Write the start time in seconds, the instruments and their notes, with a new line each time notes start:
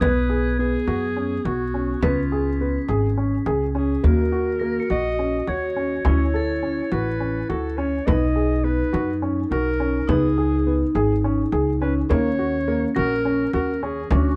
Already playing: crotales D#6
0.00 upright bass B1, vibraphone B3, grand piano B3, clarinet B4, crotales G#6, frame drum
0.30 grand piano G#4
0.59 grand piano B3, clarinet G#4
0.87 upright bass F#2, grand piano F#4, frame drum
1.17 grand piano C#4
1.45 upright bass B1, grand piano F#4, clarinet F#4, frame drum
1.74 grand piano C#4
2.01 upright bass C#2, grand piano B3, vibraphone C#4, clarinet F4, crotales B6, frame drum
2.32 grand piano G#4
2.61 grand piano B3
2.89 upright bass G#1, grand piano G#4, frame drum
3.18 grand piano C#4
3.46 upright bass C#2, grand piano G#4, frame drum
3.75 grand piano C#4, clarinet G#4
4.03 upright bass D#2, grand piano A#3, vibraphone F#4, clarinet A#4, frame drum
4.32 grand piano F#4
4.59 grand piano A#3, crotales A#6
4.80 crotales C#7
4.90 upright bass A#1, grand piano F#4, clarinet D#5, frame drum
5.19 grand piano C#4
5.47 upright bass D#2, grand piano F#4, clarinet C#5, crotales G#6, frame drum
5.77 grand piano C#4
6.05 upright bass D2, grand piano C#4, vibraphone E4, clarinet C#5, frame drum
6.34 grand piano A4, crotales A6
6.63 grand piano C#4
6.92 upright bass A1, grand piano F#4, clarinet B4, frame drum
7.20 grand piano C#4
7.49 upright bass D2, grand piano F#4, clarinet A4, frame drum
7.78 grand piano C#4, clarinet C#5
8.06 upright bass B1, grand piano B3, vibraphone D#4, clarinet D#5, frame drum
8.36 grand piano G#4
8.64 grand piano B3, clarinet B4
8.93 upright bass F#2, grand piano F#4, frame drum
9.22 grand piano C#4
9.51 upright bass B1, grand piano F#4, clarinet A#4, frame drum
9.80 grand piano C#4
10.08 upright bass C#2, grand piano B3, vibraphone D#4, clarinet G#4, frame drum
10.38 grand piano G#4
10.67 grand piano B3
10.95 upright bass G#1, grand piano G#4, frame drum
11.24 grand piano C#4
11.52 upright bass C#2, grand piano G#4, frame drum
11.82 grand piano C#4, clarinet B4
12.09 upright bass D#2, grand piano A#3, vibraphone C#4, clarinet C#5, frame drum
12.39 grand piano F#4
12.68 grand piano A#3
12.95 upright bass A#1, grand piano F#4, clarinet A#4, crotales A#6, frame drum
13.25 grand piano C#4
13.53 upright bass D#2, grand piano F#4, clarinet A#4, frame drum
13.83 grand piano C#4, clarinet G#4
14.11 upright bass D2, grand piano C#4, vibraphone D4, clarinet F#4, frame drum